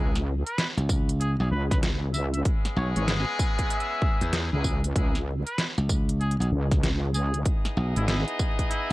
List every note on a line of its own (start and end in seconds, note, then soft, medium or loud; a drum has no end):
0.00 0.43 C#2 loud
0.00 0.17 G#3 medium
0.00 0.17 B3 medium
0.00 0.17 D#4 medium
0.00 0.17 E4 medium
0.00 0.17 G#4 medium
0.15 snare medium
0.15 closed hi-hat soft
0.46 0.67 B4 loud
0.46 closed hi-hat medium
0.58 snare loud
0.58 closed hi-hat medium
0.77 1.37 C#2 loud
0.77 closed hi-hat soft
0.89 kick loud
0.89 tambourine medium
1.09 closed hi-hat medium
1.20 1.33 G#4 medium
1.20 closed hi-hat medium
1.40 1.50 B1 loud
1.40 1.47 G#4 medium
1.51 2.43 C#2 loud
1.51 1.64 B4 medium
1.70 1.78 B4 medium
1.70 kick loud
1.70 snare soft
1.70 closed hi-hat soft
1.83 snare loud
1.83 closed hi-hat medium
2.13 2.26 E5 medium
2.13 tambourine medium
2.33 2.41 E5 medium
2.33 closed hi-hat medium
2.45 4.48 G#3 loud
2.45 4.48 B3 loud
2.45 4.48 C#4 medium
2.45 4.48 E4 loud
2.45 4.48 G#4 loud
2.45 kick loud
2.45 closed hi-hat medium
2.65 snare soft
2.65 closed hi-hat soft
2.76 2.93 B1 loud
2.76 2.89 C#5 medium
2.96 3.24 G#1 loud
2.96 3.04 C#5 medium
2.96 closed hi-hat medium
3.08 snare loud
3.08 closed hi-hat medium
3.39 kick loud
3.39 closed hi-hat soft
3.39 tambourine medium
3.59 kick medium
3.59 closed hi-hat medium
3.70 4.33 E5 loud
3.70 closed hi-hat medium
3.80 closed hi-hat soft
4.02 kick loud
4.21 4.49 E2 medium
4.21 closed hi-hat soft
4.33 snare loud
4.33 closed hi-hat medium
4.53 4.94 C#2 loud
4.53 4.82 G#3 medium
4.53 4.82 B3 medium
4.53 4.82 D#4 medium
4.53 4.82 E4 medium
4.53 4.82 G#4 medium
4.64 kick medium
4.64 tambourine medium
4.84 closed hi-hat medium
4.96 5.43 C#2 loud
4.96 5.17 G#3 medium
4.96 5.17 B3 medium
4.96 5.17 D#4 medium
4.96 5.17 E4 medium
4.96 5.17 G#4 medium
4.96 kick loud
4.96 closed hi-hat medium
5.15 snare medium
5.15 closed hi-hat soft
5.46 5.67 B4 medium
5.46 closed hi-hat soft
5.58 snare loud
5.58 closed hi-hat medium
5.78 6.37 C#2 loud
5.78 closed hi-hat soft
5.89 kick loud
5.89 tambourine medium
6.09 closed hi-hat medium
6.21 6.33 G#4 medium
6.21 closed hi-hat soft
6.31 closed hi-hat soft
6.40 6.50 B1 loud
6.40 6.47 G#4 medium
6.40 closed hi-hat soft
6.52 7.44 C#2 loud
6.71 kick loud
6.71 snare soft
6.71 closed hi-hat soft
6.83 snare loud
6.83 closed hi-hat medium
7.14 7.39 G#4 medium
7.14 tambourine medium
7.34 closed hi-hat soft
7.45 8.93 B3 loud
7.45 8.93 D#4 medium
7.45 8.93 E4 loud
7.45 8.93 G#4 loud
7.45 8.93 D#5 medium
7.45 kick loud
7.45 closed hi-hat medium
7.65 snare medium
7.65 closed hi-hat soft
7.77 7.93 B1 loud
7.96 8.24 G#1 loud
7.96 8.04 E4 medium
7.96 closed hi-hat soft
8.08 8.20 E4 medium
8.08 snare loud
8.08 closed hi-hat medium
8.28 closed hi-hat soft
8.39 kick loud
8.39 tambourine medium
8.59 kick medium
8.59 closed hi-hat medium
8.70 8.93 E4 loud
8.70 closed hi-hat medium